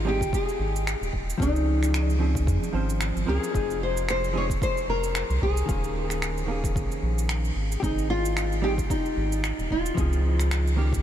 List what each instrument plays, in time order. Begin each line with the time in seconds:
Already playing: analog synth bass G#1
0.05 hollow-body jazz guitar G3 C4 D#4 G#4, nylon-string guitar G4
0.21 kick, shaker
0.33 nylon-string guitar G#4, kick, shaker
0.49 shaker
0.60 analog synth bass G#1
0.76 shaker
0.87 finger snap, shaker
1.01 analog synth bass D#1, shaker
1.08 nylon-string guitar G4
1.13 analog synth bass D#1, kick
1.30 shaker
1.38 analog synth bass C#2, hollow-body jazz guitar F3 C4 C#4, kick
1.42 nylon-string guitar D#4, hollow-body jazz guitar G#4, shaker
1.56 shaker
1.83 finger snap, shaker
1.94 finger snap, shaker
2.10 shaker
2.19 hollow-body jazz guitar F3 C4 C#4 G#4
2.35 kick, shaker
2.47 analog synth bass F2, kick, shaker
2.63 shaker
2.68 nylon-string guitar C#4
2.73 analog synth bass G#1, hollow-body jazz guitar F3 C4 C#4 C5
2.89 shaker
3.01 analog synth bass G#1, finger snap, shaker
3.16 analog synth bass G#1, shaker
3.26 analog synth bass C#2, hollow-body jazz guitar F3 C4 C#4 A#4, nylon-string guitar G#4
3.44 shaker
3.51 analog synth bass F1, hollow-body jazz guitar F3 C4 D#4, kick, shaker
3.56 hollow-body jazz guitar G#4
3.70 shaker
3.83 nylon-string guitar C5
3.97 shaker
4.09 nylon-string guitar C5, finger snap, shaker
4.24 shaker
4.33 hollow-body jazz guitar F3 C4 D#4 G#4
4.37 nylon-string guitar C#5
4.50 kick, shaker
4.62 nylon-string guitar C5, kick, shaker
4.77 shaker
4.88 analog synth bass F1, nylon-string guitar A#4
5.03 shaker
5.15 finger snap, shaker
5.30 analog synth bass C2, shaker
5.42 analog synth bass C2, nylon-string guitar G#4, kick
5.57 shaker
5.66 analog synth bass D#1, hollow-body jazz guitar D#3 A#3 C#4, kick, shaker
5.71 hollow-body jazz guitar G#4
5.84 shaker
6.10 finger snap, shaker
6.22 finger snap, shaker
6.38 shaker
6.46 hollow-body jazz guitar D#3 A#3 C#4
6.51 hollow-body jazz guitar G#4
6.64 kick, shaker
6.76 analog synth bass G#1, kick, shaker
6.92 shaker
7.03 analog synth bass A#1
7.18 shaker
7.29 finger snap, shaker
7.45 shaker
7.56 analog synth bass G#1
7.72 shaker
7.80 analog synth bass G#1, hollow-body jazz guitar C4 D#4 G4, nylon-string guitar D#4, kick, shaker
7.85 hollow-body jazz guitar G#4
7.99 shaker
8.10 nylon-string guitar F4
8.25 shaker
8.37 finger snap, shaker
8.52 shaker
8.62 hollow-body jazz guitar G3 C4 D#4 G#4, nylon-string guitar G4
8.78 kick, shaker
8.90 nylon-string guitar D#4, kick, shaker
9.06 shaker
9.17 analog synth bass G#1
9.32 shaker
9.44 finger snap, shaker
9.59 analog synth bass D#1, shaker
9.71 analog synth bass D#1, nylon-string guitar F4, kick
9.86 shaker
9.95 analog synth bass C#2, hollow-body jazz guitar F3 C4 C#4, kick, shaker
10.00 hollow-body jazz guitar G#4
10.13 shaker
10.39 finger snap, shaker
10.51 finger snap, shaker
10.67 shaker
10.76 hollow-body jazz guitar D#3 A#3 C#4 G4
10.93 kick, shaker